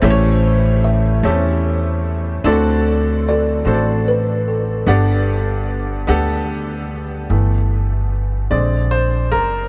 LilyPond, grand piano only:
<<
  \new Staff \with { instrumentName = "Grand piano" } { \time 6/8 \key g \major \tempo 4. = 49 <a cis' e' g' c'' cis''>4 r8 <a c' cis' e' g' a'>4 r8 | <c' d' e' fis' a' d''>4 r8 <c' d' fis' a' c'' d''>4 r8 | <b d' g' d'' fis''>4 r8 <b d' g' a' fis''>4 r8 | r4. d''8 c''8 bes'8 | }
  \new Staff \with { instrumentName = "Grand piano" } { \clef bass \time 6/8 \key g \major a,4. r4. | d4. r4. | g,4. r4. | <e a b>4. <d aes c'>4. | }
>>